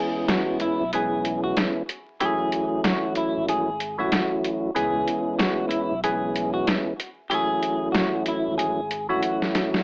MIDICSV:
0, 0, Header, 1, 5, 480
1, 0, Start_track
1, 0, Key_signature, 4, "minor"
1, 0, Tempo, 638298
1, 1660, Time_signature, 4, 2, 24, 8
1, 7394, End_track
2, 0, Start_track
2, 0, Title_t, "Clean electric guitar"
2, 0, Program_c, 0, 27
2, 0, Note_on_c, 0, 68, 109
2, 190, Note_off_c, 0, 68, 0
2, 227, Note_on_c, 0, 66, 78
2, 440, Note_off_c, 0, 66, 0
2, 462, Note_on_c, 0, 64, 77
2, 677, Note_off_c, 0, 64, 0
2, 715, Note_on_c, 0, 68, 78
2, 1066, Note_off_c, 0, 68, 0
2, 1079, Note_on_c, 0, 66, 85
2, 1169, Note_off_c, 0, 66, 0
2, 1663, Note_on_c, 0, 68, 103
2, 2113, Note_off_c, 0, 68, 0
2, 2141, Note_on_c, 0, 66, 74
2, 2357, Note_off_c, 0, 66, 0
2, 2385, Note_on_c, 0, 64, 78
2, 2599, Note_off_c, 0, 64, 0
2, 2624, Note_on_c, 0, 68, 78
2, 2981, Note_off_c, 0, 68, 0
2, 3007, Note_on_c, 0, 66, 81
2, 3553, Note_off_c, 0, 66, 0
2, 3578, Note_on_c, 0, 68, 100
2, 4030, Note_off_c, 0, 68, 0
2, 4050, Note_on_c, 0, 66, 78
2, 4271, Note_off_c, 0, 66, 0
2, 4279, Note_on_c, 0, 64, 79
2, 4504, Note_off_c, 0, 64, 0
2, 4540, Note_on_c, 0, 68, 93
2, 4899, Note_off_c, 0, 68, 0
2, 4915, Note_on_c, 0, 66, 88
2, 5007, Note_off_c, 0, 66, 0
2, 5488, Note_on_c, 0, 68, 117
2, 5945, Note_off_c, 0, 68, 0
2, 5958, Note_on_c, 0, 66, 79
2, 6184, Note_off_c, 0, 66, 0
2, 6230, Note_on_c, 0, 64, 86
2, 6441, Note_off_c, 0, 64, 0
2, 6450, Note_on_c, 0, 68, 76
2, 6814, Note_off_c, 0, 68, 0
2, 6844, Note_on_c, 0, 66, 82
2, 7391, Note_off_c, 0, 66, 0
2, 7394, End_track
3, 0, Start_track
3, 0, Title_t, "Tonewheel organ"
3, 0, Program_c, 1, 16
3, 0, Note_on_c, 1, 52, 94
3, 0, Note_on_c, 1, 56, 90
3, 0, Note_on_c, 1, 59, 83
3, 0, Note_on_c, 1, 61, 92
3, 0, Note_on_c, 1, 64, 102
3, 633, Note_off_c, 1, 52, 0
3, 633, Note_off_c, 1, 56, 0
3, 633, Note_off_c, 1, 59, 0
3, 634, Note_off_c, 1, 61, 0
3, 635, Note_off_c, 1, 64, 0
3, 699, Note_on_c, 1, 52, 90
3, 702, Note_on_c, 1, 56, 74
3, 702, Note_on_c, 1, 59, 80
3, 704, Note_on_c, 1, 61, 84
3, 705, Note_on_c, 1, 64, 97
3, 1372, Note_off_c, 1, 52, 0
3, 1374, Note_off_c, 1, 56, 0
3, 1374, Note_off_c, 1, 59, 0
3, 1375, Note_off_c, 1, 61, 0
3, 1375, Note_off_c, 1, 64, 0
3, 1656, Note_on_c, 1, 52, 97
3, 1658, Note_on_c, 1, 54, 85
3, 1658, Note_on_c, 1, 57, 89
3, 1660, Note_on_c, 1, 61, 83
3, 1663, Note_on_c, 1, 64, 107
3, 2780, Note_off_c, 1, 52, 0
3, 2780, Note_off_c, 1, 54, 0
3, 2781, Note_off_c, 1, 57, 0
3, 2781, Note_off_c, 1, 61, 0
3, 2783, Note_off_c, 1, 64, 0
3, 2993, Note_on_c, 1, 52, 91
3, 2995, Note_on_c, 1, 54, 85
3, 2996, Note_on_c, 1, 57, 80
3, 2997, Note_on_c, 1, 61, 82
3, 2999, Note_on_c, 1, 64, 99
3, 3536, Note_off_c, 1, 52, 0
3, 3537, Note_off_c, 1, 54, 0
3, 3538, Note_off_c, 1, 57, 0
3, 3538, Note_off_c, 1, 61, 0
3, 3539, Note_off_c, 1, 64, 0
3, 3569, Note_on_c, 1, 52, 94
3, 3571, Note_on_c, 1, 56, 91
3, 3572, Note_on_c, 1, 59, 86
3, 3573, Note_on_c, 1, 61, 94
3, 3575, Note_on_c, 1, 64, 109
3, 4472, Note_off_c, 1, 52, 0
3, 4473, Note_off_c, 1, 56, 0
3, 4473, Note_off_c, 1, 59, 0
3, 4474, Note_off_c, 1, 61, 0
3, 4474, Note_off_c, 1, 64, 0
3, 4540, Note_on_c, 1, 52, 90
3, 4542, Note_on_c, 1, 56, 73
3, 4543, Note_on_c, 1, 59, 81
3, 4545, Note_on_c, 1, 61, 82
3, 4546, Note_on_c, 1, 64, 99
3, 5213, Note_off_c, 1, 52, 0
3, 5214, Note_off_c, 1, 56, 0
3, 5214, Note_off_c, 1, 59, 0
3, 5215, Note_off_c, 1, 61, 0
3, 5216, Note_off_c, 1, 64, 0
3, 5497, Note_on_c, 1, 52, 97
3, 5499, Note_on_c, 1, 54, 87
3, 5500, Note_on_c, 1, 57, 92
3, 5502, Note_on_c, 1, 61, 80
3, 5503, Note_on_c, 1, 64, 102
3, 6620, Note_off_c, 1, 52, 0
3, 6621, Note_off_c, 1, 54, 0
3, 6622, Note_off_c, 1, 57, 0
3, 6622, Note_off_c, 1, 61, 0
3, 6623, Note_off_c, 1, 64, 0
3, 6834, Note_on_c, 1, 52, 91
3, 6835, Note_on_c, 1, 54, 84
3, 6836, Note_on_c, 1, 57, 78
3, 6837, Note_on_c, 1, 61, 82
3, 6839, Note_on_c, 1, 64, 99
3, 7377, Note_off_c, 1, 52, 0
3, 7377, Note_off_c, 1, 54, 0
3, 7378, Note_off_c, 1, 57, 0
3, 7378, Note_off_c, 1, 61, 0
3, 7379, Note_off_c, 1, 64, 0
3, 7394, End_track
4, 0, Start_track
4, 0, Title_t, "Sub bass"
4, 0, Program_c, 2, 38
4, 605, Note_on_c, 2, 35, 80
4, 1153, Note_off_c, 2, 35, 0
4, 1666, Note_on_c, 2, 30, 109
4, 1883, Note_off_c, 2, 30, 0
4, 2528, Note_on_c, 2, 32, 92
4, 3075, Note_off_c, 2, 32, 0
4, 3586, Note_on_c, 2, 37, 112
4, 3803, Note_off_c, 2, 37, 0
4, 4447, Note_on_c, 2, 35, 81
4, 4994, Note_off_c, 2, 35, 0
4, 5505, Note_on_c, 2, 30, 104
4, 5722, Note_off_c, 2, 30, 0
4, 6369, Note_on_c, 2, 32, 93
4, 6915, Note_off_c, 2, 32, 0
4, 7394, End_track
5, 0, Start_track
5, 0, Title_t, "Drums"
5, 215, Note_on_c, 9, 40, 84
5, 216, Note_on_c, 9, 42, 82
5, 221, Note_on_c, 9, 38, 105
5, 290, Note_off_c, 9, 40, 0
5, 291, Note_off_c, 9, 42, 0
5, 296, Note_off_c, 9, 38, 0
5, 451, Note_on_c, 9, 42, 73
5, 526, Note_off_c, 9, 42, 0
5, 699, Note_on_c, 9, 42, 91
5, 774, Note_off_c, 9, 42, 0
5, 939, Note_on_c, 9, 42, 77
5, 1014, Note_off_c, 9, 42, 0
5, 1178, Note_on_c, 9, 42, 80
5, 1180, Note_on_c, 9, 40, 95
5, 1187, Note_on_c, 9, 38, 117
5, 1253, Note_off_c, 9, 42, 0
5, 1256, Note_off_c, 9, 40, 0
5, 1262, Note_off_c, 9, 38, 0
5, 1422, Note_on_c, 9, 42, 84
5, 1497, Note_off_c, 9, 42, 0
5, 1658, Note_on_c, 9, 42, 85
5, 1733, Note_off_c, 9, 42, 0
5, 1897, Note_on_c, 9, 42, 66
5, 1972, Note_off_c, 9, 42, 0
5, 2137, Note_on_c, 9, 40, 85
5, 2138, Note_on_c, 9, 42, 83
5, 2143, Note_on_c, 9, 38, 106
5, 2212, Note_off_c, 9, 40, 0
5, 2213, Note_off_c, 9, 42, 0
5, 2218, Note_off_c, 9, 38, 0
5, 2370, Note_on_c, 9, 42, 73
5, 2446, Note_off_c, 9, 42, 0
5, 2619, Note_on_c, 9, 42, 96
5, 2695, Note_off_c, 9, 42, 0
5, 2859, Note_on_c, 9, 42, 76
5, 2934, Note_off_c, 9, 42, 0
5, 3097, Note_on_c, 9, 42, 85
5, 3100, Note_on_c, 9, 40, 96
5, 3107, Note_on_c, 9, 38, 120
5, 3173, Note_off_c, 9, 42, 0
5, 3175, Note_off_c, 9, 40, 0
5, 3182, Note_off_c, 9, 38, 0
5, 3342, Note_on_c, 9, 42, 88
5, 3417, Note_off_c, 9, 42, 0
5, 3578, Note_on_c, 9, 42, 85
5, 3654, Note_off_c, 9, 42, 0
5, 3816, Note_on_c, 9, 42, 67
5, 3891, Note_off_c, 9, 42, 0
5, 4055, Note_on_c, 9, 40, 86
5, 4056, Note_on_c, 9, 42, 86
5, 4061, Note_on_c, 9, 38, 107
5, 4130, Note_off_c, 9, 40, 0
5, 4132, Note_off_c, 9, 42, 0
5, 4137, Note_off_c, 9, 38, 0
5, 4291, Note_on_c, 9, 42, 77
5, 4366, Note_off_c, 9, 42, 0
5, 4540, Note_on_c, 9, 42, 94
5, 4615, Note_off_c, 9, 42, 0
5, 4780, Note_on_c, 9, 42, 78
5, 4855, Note_off_c, 9, 42, 0
5, 5017, Note_on_c, 9, 42, 85
5, 5020, Note_on_c, 9, 40, 95
5, 5026, Note_on_c, 9, 38, 118
5, 5092, Note_off_c, 9, 42, 0
5, 5095, Note_off_c, 9, 40, 0
5, 5101, Note_off_c, 9, 38, 0
5, 5261, Note_on_c, 9, 42, 85
5, 5336, Note_off_c, 9, 42, 0
5, 5497, Note_on_c, 9, 42, 84
5, 5572, Note_off_c, 9, 42, 0
5, 5736, Note_on_c, 9, 42, 66
5, 5811, Note_off_c, 9, 42, 0
5, 5976, Note_on_c, 9, 40, 84
5, 5977, Note_on_c, 9, 42, 83
5, 5982, Note_on_c, 9, 38, 106
5, 6051, Note_off_c, 9, 40, 0
5, 6052, Note_off_c, 9, 42, 0
5, 6057, Note_off_c, 9, 38, 0
5, 6210, Note_on_c, 9, 42, 79
5, 6285, Note_off_c, 9, 42, 0
5, 6460, Note_on_c, 9, 42, 93
5, 6535, Note_off_c, 9, 42, 0
5, 6699, Note_on_c, 9, 42, 77
5, 6774, Note_off_c, 9, 42, 0
5, 6938, Note_on_c, 9, 42, 85
5, 7013, Note_off_c, 9, 42, 0
5, 7086, Note_on_c, 9, 38, 59
5, 7161, Note_off_c, 9, 38, 0
5, 7181, Note_on_c, 9, 42, 84
5, 7183, Note_on_c, 9, 38, 86
5, 7256, Note_off_c, 9, 42, 0
5, 7259, Note_off_c, 9, 38, 0
5, 7326, Note_on_c, 9, 38, 88
5, 7394, Note_off_c, 9, 38, 0
5, 7394, End_track
0, 0, End_of_file